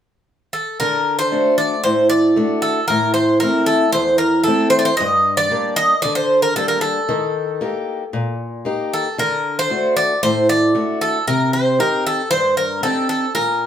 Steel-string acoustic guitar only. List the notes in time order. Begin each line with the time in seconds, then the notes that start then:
0.80 D3
1.32 A3 D4 F#4
1.85 A2
2.36 A3 D4 F#4
2.90 A2
3.42 A3 C4 E4
3.95 E2
4.47 A3 C4 E4
5.00 G2
5.51 G3 A#3 D4
6.05 D3
6.57 G3 A#3 D4
7.09 D#3
7.61 A#3 D#4 G4
8.13 A#2
8.65 A#3 D#4 G4
9.18 D3
9.70 A3 D4 F#4
10.23 A2
10.75 A3 D4 F#4
11.27 C3
11.78 C4 D#4 G4
12.31 G2
12.83 C4 D#4 G4
13.35 A#2